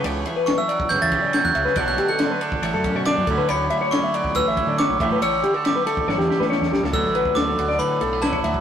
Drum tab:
RD |x-x-x-x-x-x-x-x-|x-x-x-x-x-x-x-x-|x-x-x-x-x-x-x-x-|x-x-x-x---------|
SD |----o-------o--o|----o-------o---|----o--o----o---|----o---oooooooo|
BD |-------o--o-----|o------o--o---o-|-------o--o---o-|-------o--------|

RD |x-x-x-x-x-x-x-x-|
SD |----o--o----o---|
BD |o--o---------o-o|